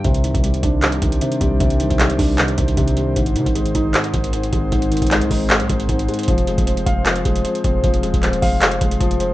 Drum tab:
HH |x-x-x-x-x-x-x---x-x-x-x-x-x-x---|x-x-x-x-x-x-o---x-x-x-x-x-x-x---|x-x-x-x-x-x-x---x-x-x-x-x-x-x---|x-x-xxxxx-x-o---x-x-x-x-x-x-xxxx|
CP |----------------x---------------|--------x-------x---------------|----------------x---------------|--------x-------x---------------|
BD |o-----o-----o-------o-------o---|o-----o-----o-------o---o-------|o-----o-----o-------o-------o---|o-----o-----o-------o---o-------|

HH |x-x-x-x-x-x-x---x-x-x-x-x-x-x---|x-x-x-x-x-x-o---x-x-x-x-x-x-x---|
CP |----------------x---------------|--------x-------x---------------|
BD |o-----o-----o-------o-------o---|o-----o-----o-------o---o-------|